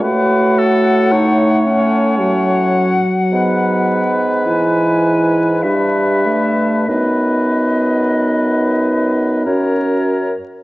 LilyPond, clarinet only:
\new Staff \with { instrumentName = "Clarinet" } { \time 3/4 \key b \major \tempo 4 = 52 fis'4 dis'8 cis'4~ cis'16 r16 | b4 e'4 d'4 | dis'2 fis'8 r8 | }